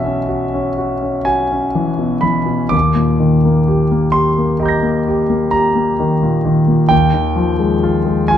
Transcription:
grand piano
Already playing: B1 B2 E3 C#4 F#4 D#5 E5
0.05 C#4
0.28 F#4
0.54 C#4
0.78 F#4
1.03 C#4
1.25 F#4 G#5
1.51 C#4
1.75 E3
1.99 B2
2.21 E3 B5
2.46 B2
2.69 D#2 D6
2.95 A#2
3.20 D#3
3.45 A#3
3.68 G4
3.91 A#3
4.12 G4 C6
4.38 A#3
4.60 G4 D#5 A#5
4.66 G6 A#6
4.83 A#3
5.08 G4
5.30 A#3
5.51 G4 A#5
5.76 A#3
6.00 D#3
6.23 A#2
6.45 D#3
6.68 A#2
6.89 D#2 G5
7.14 D#3
7.36 F3
7.59 G#3
7.83 F4
8.06 G#3
8.28 F4 G#5

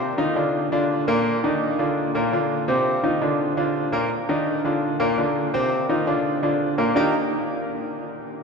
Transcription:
grand piano
Already playing: C3 C4 C5
0.18 D#3 D#4 F4
0.36 D3 D4 F4
0.72 D3 D4 F4
1.08 A#2 A#3 A#4
1.43 D#3 D4 D#4
1.79 D3 D4 F4
2.15 A#2 A#3 A#4
2.32 D3 D4 F4
2.68 C3 C4 C5
3.03 D#3 D#4 F4
3.21 D3 D4 F4
3.57 D3 D4 F4
3.92 A#2 A#3 A#4
4.29 D#3 D4 D#4
4.64 D3 D4 F4
5.00 A#2 A#3 A#4
5.18 D3 D4 F4
5.54 C3 C4 C5
5.89 D#3 D#4 F4
6.07 D3 D4 F4
6.42 D3 D4 F4
6.78 A#2 A#3 A#4
6.95 D#3 A#3 D4 D#4 G4 A#4

